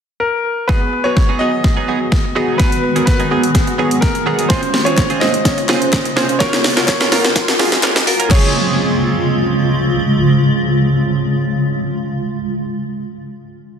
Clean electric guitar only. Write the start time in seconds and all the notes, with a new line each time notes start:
0.69 F#3 B3 D#4 G#4
0.81 muted clean electric guitar stroke
0.93 muted clean electric guitar stroke
1.05 F#3 B3 D#4 G#4
1.16 muted clean electric guitar stroke
1.29 F#3 B3 D#4 G#4
1.40 F#3 B3 D#4 G#4
1.53 muted clean electric guitar stroke
1.64 muted clean electric guitar stroke
1.77 F#3 B3 D#4 G#4
1.88 F#3 B3 D#4 G#4
2.00 muted clean electric guitar stroke
2.12 muted clean electric guitar stroke
2.24 muted clean electric guitar stroke
2.35 F#3 B3 D#4 G#4
2.48 F#3 B3 D#4 G#4
2.59 F#3 B3 D#4 G#4
2.72 muted clean electric guitar stroke
2.83 muted clean electric guitar stroke
2.96 F#3 B3 D#4 G#4
3.07 muted clean electric guitar stroke
3.19 F#3 B3 D#4 G#4
3.31 F#3 B3 D#4 G#4
3.43 muted clean electric guitar stroke
3.55 muted clean electric guitar stroke
3.67 muted clean electric guitar stroke
3.78 F#3 B3 D#4 G#4
3.91 muted clean electric guitar stroke
4.03 muted clean electric guitar stroke
4.15 muted clean electric guitar stroke
4.26 F#3 B3 D#4 G#4
4.38 F#3 B3 D#4 G#4
4.50 G#3 C4 F4 G#4
4.62 muted clean electric guitar stroke
4.74 muted clean electric guitar stroke
4.86 G#3 C4 F4 G#4
4.97 muted clean electric guitar stroke
5.10 G#3 C4 F4 G#4
5.21 G#3 C4 F4 G#4
5.34 muted clean electric guitar stroke
5.45 muted clean electric guitar stroke
5.58 muted clean electric guitar stroke
5.69 G#3 C4 F4 G#4
5.81 muted clean electric guitar stroke
6.05 muted clean electric guitar stroke
6.16 G#3 C4 F4 G#4
6.29 muted clean electric guitar stroke
6.40 A#3 C#4 F4 A#4
6.53 muted clean electric guitar stroke
6.64 muted clean electric guitar stroke
6.77 A#3 C#4 F4 A#4
6.88 muted clean electric guitar stroke
7.00 A#3 C#4 F4 A#4
7.12 A#3 C#4 F4 A#4
7.24 muted clean electric guitar stroke
7.36 muted clean electric guitar stroke
7.48 muted clean electric guitar stroke
7.59 A#3 C#4 F4 A#4
7.72 muted clean electric guitar stroke
7.83 A#3 C#4 F4 A#4
7.96 muted clean electric guitar stroke
8.07 muted clean electric guitar stroke
8.19 A#3 C#4 F4 A#4
8.30 G#3 C4 F4
8.35 G#4